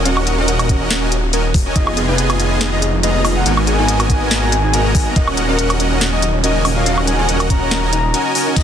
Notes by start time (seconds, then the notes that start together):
Already playing: D#1 D#3 A#3 C#4 F#4
0.05 C#4 F#4 A#4 D#5 F#5, closed hi-hat
0.17 high woodblock
0.27 F#4, closed hi-hat
0.38 C#4 F#4 A#4 D#5 F#5
0.48 A#4, closed hi-hat
0.59 closed hi-hat, high woodblock
0.69 C#4 F#4 A#4 D#5 F#5, kick, closed hi-hat
0.81 C#5
0.91 C#4, snare, closed hi-hat
1.02 C#4 F#4 A#4 D#5 G#5
1.12 F#4, closed hi-hat
1.23 C#4
1.33 C#4 F#4 A#4 D#5 G#5, closed hi-hat
1.54 kick, open hi-hat
1.66 C#4 F#4 A#4 C#5 D#5 G#5
1.76 F1 D#3 G#3 B3 D#4 F4 G#4 D#5 G#5, kick, closed hi-hat
1.87 high woodblock
1.97 G#4, closed hi-hat
2.08 B3 D#4 F4 G#4 B4 D#5 G#5
2.18 B4, closed hi-hat
2.30 closed hi-hat, high woodblock
2.39 B3 D#4 F4 G#4 D#5 G#5, closed hi-hat
2.51 D#5
2.61 D#4, snare, closed hi-hat
2.72 B3 F4 G#4 D#5 A#5
2.82 G#4, closed hi-hat
2.93 D#4
3.03 B3 F4 G#4 B4 D#5 A#5, closed hi-hat
3.25 B3 D#4 F4 G#4 D#5 A#5, open hi-hat, high woodblock
3.36 D#5 F#5
3.46 G#1 B2 A#3 B3 D#4 F#4 A#4 D#5 G#5, closed hi-hat
3.57 high woodblock
3.67 G#4 G#5, closed hi-hat
3.79 B3 D#4 F#4 A#4 D#5 G#5
3.88 A#4, closed hi-hat
4.00 closed hi-hat, high woodblock
4.10 B3 D#4 F#4 A#4 D#5 G#5, kick, closed hi-hat
4.21 B4
4.31 D#4, snare, closed hi-hat
4.42 B3 F#4 A#4 D#5 A#5
4.52 G#4, closed hi-hat
4.64 D#4
4.74 B3 F#4 A#4 D#5 A#5, closed hi-hat
4.95 B3 D#4 F#4 A#4 D#5 A#5, kick, open hi-hat
5.06 B4
5.16 D#1 C#3 F#3 C#4 D#4 F#4 A#4 D#5 F#5, kick, closed hi-hat
5.28 high woodblock
5.37 F#4, closed hi-hat
5.49 C#4 F#4 A#4 D#5 F#5
5.59 A#4, closed hi-hat
5.70 closed hi-hat, high woodblock
5.80 C#4 F#4 A#4 D#5 F#5, closed hi-hat
5.91 C#5
6.01 C#4, snare, closed hi-hat
6.13 C#4 F#4 A#4 D#5 G#5
6.22 F#4, closed hi-hat
6.34 C#4
6.43 C#4 F#4 A#4 D#5 G#5, closed hi-hat
6.65 C#4 F#4 A#4 D#5 G#5, open hi-hat, high woodblock
6.76 C#5 F5
6.86 C#4 F#4 A#4 D#5 F#5, closed hi-hat
6.98 high woodblock
7.07 F#4 G#5, closed hi-hat
7.19 C#4 F#4 A#4 D#5 F#5
7.29 A#4, closed hi-hat
7.40 closed hi-hat, high woodblock
7.50 C#4 F#4 A#4 D#5 F#5 A#5, kick, closed hi-hat
7.62 C#5
7.71 C#4, snare, closed hi-hat
7.83 C#4 F#4 A#4 D#5 G#5
7.93 D#4, closed hi-hat
8.04 D#5
8.14 C#4 F#4 A#4 D#5 F#5 G#5, closed hi-hat
8.35 C#4 F#4 A#4 D#5 G#5, open hi-hat
8.47 D#4
8.56 F1 B3 F4 G#4 D#5 G#5, kick, closed hi-hat, crash